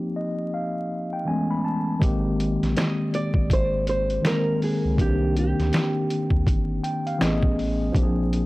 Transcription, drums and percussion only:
2.02 kick loud
2.02 closed hi-hat medium
2.40 closed hi-hat medium
2.63 snare soft
2.63 closed hi-hat soft
2.77 snare loud
2.77 closed hi-hat medium
3.14 closed hi-hat medium
3.34 kick medium
3.50 kick medium
3.50 closed hi-hat medium
3.87 closed hi-hat medium
4.10 closed hi-hat soft
4.25 snare loud
4.25 closed hi-hat medium
4.62 open hi-hat soft
4.98 kick loud
4.98 closed hi-hat medium
5.37 closed hi-hat medium
5.60 snare soft
5.60 closed hi-hat soft
5.73 snare loud
5.73 closed hi-hat medium
6.10 closed hi-hat medium
6.30 kick medium
6.47 kick loud
6.47 closed hi-hat medium
6.84 closed hi-hat medium
7.07 closed hi-hat soft
7.21 snare loud
7.21 closed hi-hat medium
7.43 kick loud
7.59 open hi-hat soft
7.95 kick loud
7.95 closed hi-hat medium
8.33 closed hi-hat medium

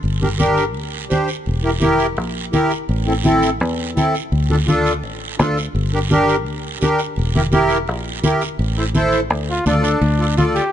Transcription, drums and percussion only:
0.03 long guiro medium
0.23 high conga medium
0.39 high conga medium
0.39 short guiro medium
0.57 short guiro medium
0.74 long guiro medium
1.10 high conga medium
1.10 short guiro medium
1.28 short guiro medium
1.46 long guiro medium
1.81 high conga medium
1.81 short guiro medium
1.99 short guiro medium
2.17 long guiro medium
2.53 high conga medium
2.53 short guiro medium
2.71 short guiro medium
2.89 long guiro medium
3.25 high conga medium
3.25 short guiro medium
3.42 short guiro medium
3.60 long guiro medium
3.97 high conga medium
3.97 short guiro medium
4.15 short guiro medium
4.32 long guiro medium
4.50 high conga medium
4.68 high conga medium
4.68 short guiro medium
4.86 short guiro medium
5.04 long guiro medium
5.39 high conga medium
5.39 short guiro medium
5.57 short guiro medium
5.76 long guiro medium
6.11 high conga medium
6.11 short guiro medium
6.29 short guiro medium
6.46 long guiro medium
6.81 high conga medium
6.81 short guiro medium
6.99 short guiro medium
7.16 long guiro medium
7.36 high conga medium
7.52 high conga medium
7.52 short guiro medium
7.69 short guiro medium
7.88 long guiro medium
8.23 high conga medium
8.23 short guiro medium
8.41 short guiro medium
8.59 long guiro medium
8.95 high conga medium
8.95 short guiro medium
9.12 short guiro medium
9.30 long guiro medium
9.66 high conga medium
9.66 short guiro medium
9.84 short guiro medium
10.02 high timbale medium
10.02 long guiro medium
10.37 high conga medium
10.37 high timbale medium
10.37 short guiro medium
10.56 high timbale medium
10.56 short guiro medium

